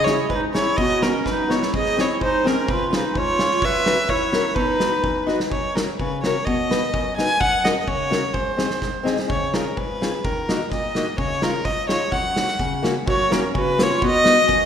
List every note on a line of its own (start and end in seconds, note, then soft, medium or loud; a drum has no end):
0.00 0.18 C#3 medium
0.00 0.13 G#4 loud
0.04 0.17 C#4 medium
0.04 0.18 E4 medium
0.04 0.29 C#5 medium
0.04 snare medium
0.09 0.32 E4 medium
0.09 0.18 G#4 medium
0.29 0.65 G#2 medium
0.29 0.41 B4 medium
0.29 kick medium
0.35 0.45 D#4 medium
0.53 0.65 C#4 medium
0.53 0.65 E4 medium
0.53 0.65 G#4 medium
0.53 0.78 C#5 loud
0.53 snare medium
0.59 0.83 E4 medium
0.77 1.14 B2 medium
0.77 1.04 D#5 loud
0.77 kick medium
0.81 1.09 F#4 medium
1.02 1.12 B3 medium
1.02 1.12 D#4 medium
1.02 1.13 F#4 medium
1.02 1.28 A#4 medium
1.02 snare medium
1.08 1.32 C#4 medium
1.25 1.61 F#2 medium
1.25 1.52 B4 medium
1.25 kick medium
1.25 snare soft
1.31 1.57 D#4 medium
1.48 1.60 B3 medium
1.48 1.60 D#4 medium
1.48 1.61 F#4 medium
1.48 1.73 C#5 medium
1.48 snare medium
1.55 1.76 E4 medium
1.62 snare medium
1.73 2.09 G#2 medium
1.73 2.02 G#4 medium
1.73 2.02 D#5 loud
1.73 kick medium
1.86 snare soft
1.96 2.07 C4 medium
1.96 2.08 D#4 soft
1.96 2.08 G#4 medium
1.96 snare medium
2.00 2.22 E4 medium
2.00 2.21 C#5 medium
2.20 2.56 G#2 medium
2.20 2.48 C5 medium
2.20 kick medium
2.25 2.50 D#4 medium
2.44 2.55 C4 medium
2.44 2.56 D#4 medium
2.44 2.56 G#4 medium
2.44 2.71 A#4 medium
2.44 snare medium
2.49 2.73 C#4 medium
2.66 3.03 C#3 medium
2.66 2.94 B4 medium
2.66 kick medium
2.72 2.95 F4 medium
2.91 3.02 C#4 medium
2.91 3.03 F4 soft
2.91 3.03 G#4 medium
2.91 snare medium
2.96 3.20 D#4 medium
2.96 3.19 B4 medium
3.14 3.50 G#2 medium
3.14 3.66 C#5 loud
3.14 kick medium
3.18 3.66 F4 medium
3.38 3.49 C#4 medium
3.38 3.50 F4 medium
3.38 3.50 G#4 medium
3.38 snare medium
3.51 snare soft
3.62 3.98 F#2 medium
3.62 4.12 B4 loud
3.62 4.11 E5 loud
3.62 kick medium
3.86 3.97 C#4 medium
3.86 3.97 F#4 soft
3.86 3.97 B4 medium
3.86 snare medium
4.08 4.44 F#2 medium
4.08 4.58 E4 medium
4.08 4.57 C#5 loud
4.08 kick medium
4.32 4.43 C#4 medium
4.32 4.43 F#4 medium
4.32 4.44 A#4 medium
4.32 snare medium
4.55 4.91 B2 medium
4.55 5.29 D#4 medium
4.55 5.28 B4 loud
4.55 kick medium
4.80 4.91 D#4 soft
4.80 4.91 F#4 medium
4.80 4.92 B4 medium
4.80 snare medium
5.03 5.39 F#2 medium
5.03 kick medium
5.27 5.38 D#4 medium
5.27 5.39 F#4 medium
5.27 5.39 B4 medium
5.27 snare soft
5.40 snare medium
5.50 5.86 F#2 medium
5.50 5.77 C#5 medium
5.50 kick medium
5.75 5.86 C#4 soft
5.75 5.86 F#4 soft
5.75 5.97 A#4 medium
5.75 5.87 A#4 medium
5.75 snare medium
5.98 6.35 C#3 medium
5.98 6.21 B4 medium
5.98 kick medium
6.23 6.34 C#4 medium
6.23 6.35 F#4 medium
6.23 6.35 A#4 medium
6.23 6.47 C#5 medium
6.23 snare medium
6.45 6.82 B2 medium
6.45 7.16 D#5 loud
6.45 kick medium
6.69 6.80 D#4 medium
6.69 6.81 F#4 medium
6.69 6.81 B4 medium
6.69 snare medium
6.94 7.29 F#2 medium
6.94 kick medium
7.16 7.28 D#4 medium
7.16 7.28 F#4 medium
7.16 7.29 B4 medium
7.16 7.42 G#5 loud
7.16 snare medium
7.40 7.76 F#2 medium
7.40 7.66 F#5 loud
7.40 kick medium
7.64 7.74 C#4 medium
7.64 7.75 F#4 medium
7.64 7.76 A#4 medium
7.64 7.80 D#5 medium
7.64 snare medium
7.80 7.89 D#5 medium
7.87 8.23 C#3 medium
7.87 8.35 C#5 loud
7.87 kick medium
8.10 8.21 C#4 medium
8.10 8.21 F#4 medium
8.10 8.22 A#4 medium
8.10 snare medium
8.33 8.69 G#2 medium
8.33 9.06 C5 medium
8.33 kick medium
8.56 8.68 C4 soft
8.56 8.68 D#4 soft
8.56 8.69 G#4 medium
8.56 snare medium
8.70 snare soft
8.81 9.17 G#2 medium
8.81 kick medium
8.81 snare soft
9.03 9.15 C4 medium
9.03 9.16 D#4 medium
9.03 9.16 G#4 medium
9.03 snare medium
9.19 snare medium
9.28 9.64 C#3 medium
9.28 9.56 C#5 medium
9.28 kick medium
9.54 9.64 C#4 medium
9.54 9.64 F4 medium
9.54 9.65 G#4 medium
9.54 9.79 A#4 medium
9.54 snare medium
9.77 10.12 G#2 medium
9.77 10.26 B4 medium
9.77 kick medium
10.01 10.12 C#4 medium
10.01 10.12 F4 medium
10.01 10.12 G#4 medium
10.01 snare medium
10.25 10.60 D#3 medium
10.25 10.72 A#4 medium
10.25 kick medium
10.48 10.59 A#3 medium
10.48 10.59 D#4 soft
10.48 10.60 F#4 medium
10.48 snare medium
10.72 11.07 A#2 medium
10.72 11.15 D#5 medium
10.72 kick medium
10.72 snare soft
10.95 11.06 A#3 medium
10.95 11.06 D#4 medium
10.95 11.06 F#4 medium
10.95 snare medium
11.18 11.53 C#3 medium
11.18 11.44 C#5 medium
11.18 kick medium
11.42 11.52 G#3 medium
11.42 11.53 C#4 soft
11.42 11.53 F4 medium
11.42 11.66 A#4 medium
11.42 snare medium
11.65 12.01 G#2 medium
11.65 11.88 D#5 loud
11.65 kick medium
11.89 11.99 G#3 medium
11.89 12.00 C#4 medium
11.89 12.00 F4 medium
11.89 12.13 C#5 loud
11.89 snare medium
12.12 12.48 F#2 medium
12.12 12.84 F#5 medium
12.12 kick medium
12.36 12.47 A#3 medium
12.36 12.47 C#4 soft
12.36 12.47 F#4 medium
12.36 snare medium
12.48 snare soft
12.59 12.96 C#3 medium
12.59 kick medium
12.83 12.94 A#3 medium
12.83 12.94 C#4 medium
12.83 12.95 F#4 medium
12.83 snare medium
13.06 13.42 F#2 medium
13.06 13.35 F#4 medium
13.06 13.34 C#5 medium
13.06 kick medium
13.30 13.41 A#3 medium
13.30 13.42 C#4 medium
13.30 13.56 C#4 medium
13.30 13.42 F#4 medium
13.30 13.55 A#4 medium
13.30 snare medium
13.30 hi-hat pedal medium
13.54 13.90 C#3 medium
13.54 13.85 F#4 medium
13.54 13.85 B4 medium
13.54 kick medium
13.78 13.89 A#3 medium
13.78 13.89 C#4 medium
13.78 13.90 F#4 medium
13.78 snare medium
13.78 hi-hat pedal soft
13.83 14.03 F4 medium
13.83 14.04 C#5 loud
14.01 14.37 B2 medium
14.01 14.65 F#4 medium
14.01 kick medium
14.06 14.65 D#5 loud
14.23 14.35 B3 medium
14.23 14.36 D#4 medium
14.23 14.36 F#4 medium
14.23 snare medium
14.23 hi-hat pedal soft
14.47 14.65 F#2 medium
14.47 kick medium